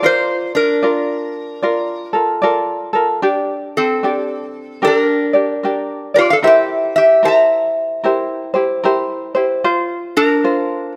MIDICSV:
0, 0, Header, 1, 3, 480
1, 0, Start_track
1, 0, Key_signature, -2, "major"
1, 0, Tempo, 800107
1, 20, Time_signature, 4, 2, 24, 8
1, 6578, End_track
2, 0, Start_track
2, 0, Title_t, "Resonator guitar played with a steel bar"
2, 0, Program_c, 0, 25
2, 23, Note_on_c, 0, 65, 64
2, 34, Note_on_c, 0, 72, 86
2, 307, Note_off_c, 0, 65, 0
2, 327, Note_off_c, 0, 72, 0
2, 329, Note_on_c, 0, 62, 64
2, 338, Note_on_c, 0, 70, 73
2, 1264, Note_off_c, 0, 62, 0
2, 1269, Note_off_c, 0, 70, 0
2, 2262, Note_on_c, 0, 69, 77
2, 2266, Note_on_c, 0, 60, 62
2, 2886, Note_off_c, 0, 60, 0
2, 2907, Note_off_c, 0, 69, 0
2, 2907, Note_on_c, 0, 69, 83
2, 2922, Note_on_c, 0, 62, 62
2, 2979, Note_off_c, 0, 69, 0
2, 2979, Note_on_c, 0, 70, 83
2, 3674, Note_off_c, 0, 62, 0
2, 3693, Note_on_c, 0, 74, 81
2, 3710, Note_on_c, 0, 65, 71
2, 3714, Note_off_c, 0, 70, 0
2, 3771, Note_off_c, 0, 74, 0
2, 3780, Note_off_c, 0, 65, 0
2, 3781, Note_on_c, 0, 77, 84
2, 3797, Note_on_c, 0, 69, 68
2, 3811, Note_off_c, 0, 77, 0
2, 3827, Note_off_c, 0, 69, 0
2, 3863, Note_on_c, 0, 76, 81
2, 3883, Note_on_c, 0, 67, 75
2, 4157, Note_off_c, 0, 67, 0
2, 4167, Note_off_c, 0, 76, 0
2, 4174, Note_on_c, 0, 76, 93
2, 4185, Note_on_c, 0, 67, 69
2, 4338, Note_off_c, 0, 67, 0
2, 4349, Note_off_c, 0, 76, 0
2, 4351, Note_on_c, 0, 82, 101
2, 4367, Note_on_c, 0, 76, 76
2, 4802, Note_off_c, 0, 82, 0
2, 4809, Note_off_c, 0, 76, 0
2, 6099, Note_on_c, 0, 62, 77
2, 6101, Note_on_c, 0, 70, 100
2, 6549, Note_off_c, 0, 62, 0
2, 6549, Note_off_c, 0, 70, 0
2, 6578, End_track
3, 0, Start_track
3, 0, Title_t, "Ukulele"
3, 0, Program_c, 1, 24
3, 16, Note_on_c, 1, 74, 68
3, 18, Note_on_c, 1, 65, 78
3, 19, Note_on_c, 1, 70, 76
3, 492, Note_off_c, 1, 65, 0
3, 495, Note_off_c, 1, 74, 0
3, 495, Note_on_c, 1, 74, 58
3, 500, Note_off_c, 1, 70, 0
3, 500, Note_on_c, 1, 65, 59
3, 502, Note_on_c, 1, 70, 59
3, 972, Note_off_c, 1, 65, 0
3, 975, Note_off_c, 1, 74, 0
3, 975, Note_on_c, 1, 74, 66
3, 979, Note_off_c, 1, 70, 0
3, 979, Note_on_c, 1, 65, 70
3, 982, Note_on_c, 1, 70, 66
3, 1276, Note_off_c, 1, 74, 0
3, 1278, Note_off_c, 1, 70, 0
3, 1278, Note_on_c, 1, 69, 53
3, 1283, Note_off_c, 1, 65, 0
3, 1285, Note_on_c, 1, 70, 46
3, 1290, Note_on_c, 1, 65, 44
3, 1450, Note_on_c, 1, 74, 66
3, 1452, Note_off_c, 1, 65, 0
3, 1453, Note_off_c, 1, 70, 0
3, 1456, Note_off_c, 1, 69, 0
3, 1459, Note_on_c, 1, 65, 65
3, 1460, Note_on_c, 1, 70, 66
3, 1463, Note_on_c, 1, 69, 77
3, 1751, Note_off_c, 1, 69, 0
3, 1758, Note_on_c, 1, 69, 60
3, 1762, Note_off_c, 1, 70, 0
3, 1762, Note_off_c, 1, 74, 0
3, 1766, Note_off_c, 1, 65, 0
3, 1770, Note_on_c, 1, 70, 54
3, 1774, Note_on_c, 1, 65, 53
3, 1931, Note_off_c, 1, 65, 0
3, 1934, Note_on_c, 1, 62, 84
3, 1935, Note_off_c, 1, 69, 0
3, 1935, Note_off_c, 1, 70, 0
3, 1938, Note_on_c, 1, 67, 75
3, 1938, Note_on_c, 1, 74, 84
3, 2411, Note_off_c, 1, 62, 0
3, 2419, Note_off_c, 1, 74, 0
3, 2419, Note_on_c, 1, 62, 61
3, 2425, Note_off_c, 1, 67, 0
3, 2425, Note_on_c, 1, 67, 61
3, 2429, Note_on_c, 1, 74, 62
3, 2888, Note_off_c, 1, 62, 0
3, 2891, Note_on_c, 1, 70, 57
3, 2893, Note_off_c, 1, 67, 0
3, 2894, Note_off_c, 1, 74, 0
3, 2895, Note_on_c, 1, 62, 67
3, 2895, Note_on_c, 1, 67, 66
3, 2901, Note_on_c, 1, 74, 61
3, 3192, Note_off_c, 1, 74, 0
3, 3199, Note_on_c, 1, 74, 48
3, 3201, Note_off_c, 1, 67, 0
3, 3202, Note_off_c, 1, 70, 0
3, 3204, Note_off_c, 1, 62, 0
3, 3208, Note_on_c, 1, 67, 45
3, 3214, Note_on_c, 1, 62, 40
3, 3377, Note_off_c, 1, 67, 0
3, 3377, Note_off_c, 1, 74, 0
3, 3378, Note_off_c, 1, 62, 0
3, 3379, Note_on_c, 1, 70, 57
3, 3385, Note_on_c, 1, 62, 60
3, 3388, Note_on_c, 1, 67, 67
3, 3392, Note_on_c, 1, 74, 55
3, 3678, Note_off_c, 1, 74, 0
3, 3685, Note_off_c, 1, 67, 0
3, 3685, Note_on_c, 1, 74, 53
3, 3686, Note_off_c, 1, 70, 0
3, 3689, Note_off_c, 1, 62, 0
3, 3692, Note_on_c, 1, 67, 45
3, 3699, Note_on_c, 1, 62, 45
3, 3855, Note_off_c, 1, 67, 0
3, 3855, Note_on_c, 1, 70, 68
3, 3857, Note_off_c, 1, 62, 0
3, 3859, Note_on_c, 1, 64, 77
3, 3860, Note_off_c, 1, 74, 0
3, 3862, Note_on_c, 1, 67, 71
3, 3866, Note_on_c, 1, 72, 75
3, 4329, Note_off_c, 1, 70, 0
3, 4332, Note_off_c, 1, 64, 0
3, 4336, Note_on_c, 1, 70, 58
3, 4338, Note_off_c, 1, 67, 0
3, 4339, Note_on_c, 1, 64, 59
3, 4344, Note_off_c, 1, 72, 0
3, 4345, Note_on_c, 1, 67, 68
3, 4347, Note_on_c, 1, 72, 66
3, 4814, Note_off_c, 1, 70, 0
3, 4818, Note_off_c, 1, 64, 0
3, 4821, Note_on_c, 1, 70, 59
3, 4823, Note_off_c, 1, 67, 0
3, 4825, Note_on_c, 1, 64, 68
3, 4830, Note_off_c, 1, 72, 0
3, 4830, Note_on_c, 1, 67, 63
3, 4832, Note_on_c, 1, 72, 60
3, 5114, Note_off_c, 1, 72, 0
3, 5121, Note_off_c, 1, 67, 0
3, 5122, Note_on_c, 1, 72, 61
3, 5126, Note_off_c, 1, 70, 0
3, 5127, Note_off_c, 1, 64, 0
3, 5128, Note_on_c, 1, 67, 54
3, 5134, Note_on_c, 1, 64, 50
3, 5297, Note_off_c, 1, 64, 0
3, 5298, Note_off_c, 1, 67, 0
3, 5298, Note_off_c, 1, 72, 0
3, 5301, Note_on_c, 1, 70, 75
3, 5305, Note_on_c, 1, 64, 65
3, 5311, Note_on_c, 1, 67, 75
3, 5311, Note_on_c, 1, 72, 81
3, 5600, Note_off_c, 1, 72, 0
3, 5607, Note_off_c, 1, 70, 0
3, 5607, Note_on_c, 1, 72, 71
3, 5609, Note_off_c, 1, 64, 0
3, 5609, Note_off_c, 1, 67, 0
3, 5616, Note_on_c, 1, 67, 60
3, 5617, Note_on_c, 1, 64, 56
3, 5779, Note_off_c, 1, 72, 0
3, 5784, Note_off_c, 1, 67, 0
3, 5785, Note_on_c, 1, 65, 88
3, 5786, Note_off_c, 1, 64, 0
3, 5786, Note_on_c, 1, 72, 86
3, 6260, Note_off_c, 1, 72, 0
3, 6265, Note_off_c, 1, 65, 0
3, 6265, Note_on_c, 1, 65, 60
3, 6267, Note_on_c, 1, 72, 65
3, 6578, Note_off_c, 1, 65, 0
3, 6578, Note_off_c, 1, 72, 0
3, 6578, End_track
0, 0, End_of_file